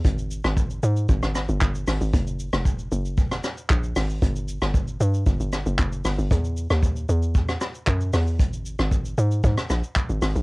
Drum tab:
HH |p-------------o-|p-------------o-|p-------------o-|p-------------o-|
SH |xxxxxxxxxxxxxxxx|xxxxxxxxxxxxxxxx|xxxxxxxxxxxxxxxx|xxxxxxxxxxxxxxxx|
CP |------------x---|------------x---|------------x---|------------x---|
SD |---r-----rr---r-|---r-----rr---r-|---r------r---r-|---r-----rr---r-|
BD |o---o---o---o---|o---o---o---o---|o---o---o---o---|o---o---o---o---|

HH |p-------------o-|
SH |xxxxxxxxxxxxxxxx|
CP |------------x---|
SD |---r-----rr---r-|
BD |o---o---o---o---|